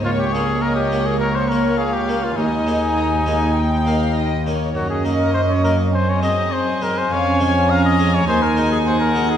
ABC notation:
X:1
M:4/4
L:1/16
Q:1/4=102
K:Ebmix
V:1 name="Violin section"
d16 | a8 g6 z2 | [K:Abmix] e8 a8- | a16 |]
V:2 name="Violin section"
d4 e4 d4 f4 | e4 b2 a2 g2 f2 e2 d2 | [K:Abmix] z8 e8 | f2 a2 b4 a4 g4 |]
V:3 name="Trumpet"
F G A2 B G2 A B c B2 A G2 F | E12- E2 z2 | [K:Abmix] G A2 B c d B2 c d e2 c2 B c | d4 f e2 d c B2 A c B2 A |]
V:4 name="Viola section"
B,16 | E12- E2 z2 | [K:Abmix] D8 C8 | D8 E8 |]
V:5 name="Harpsichord"
z2 [B,D]4 [B,D]2 z2 [B,D]4 [B,D]2 | z2 [A,B,E]4 [A,B,E]2 z2 [B,E]4 [B,E]2 | [K:Abmix] z2 [B,E]4 [B,E]2 z2 [A,CE]4 [A,CE]2 | z2 [A,DF]4 [A,DF]2 z2 [A,EG]4 [A,EG]2 |]
V:6 name="Harpsichord" clef=bass
D,,16 | E,,12- E,,2 z2 | [K:Abmix] G,,16 | F,,8 E,,8 |]
V:7 name="Cello section" clef=bass
D,,16 | E,,12- E,,2 z2 | [K:Abmix] G,,16 | F,,8 E,,8 |]